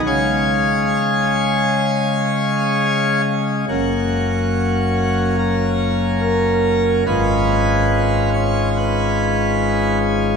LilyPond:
<<
  \new Staff \with { instrumentName = "Pipe organ" } { \time 4/4 \key fis \major \tempo 4 = 71 <gis' cis'' eis''>2.~ <gis' cis'' eis''>8 r8 | fis'2 ais'4 ais'4 | b'4. cis''8 b'4. r8 | }
  \new Staff \with { instrumentName = "Pipe organ" } { \clef bass \time 4/4 \key fis \major <cis gis cis'>1 | <fis,, fis, ais cis'>1 | <gis,, gis, gis cis' eis'>1 | }
>>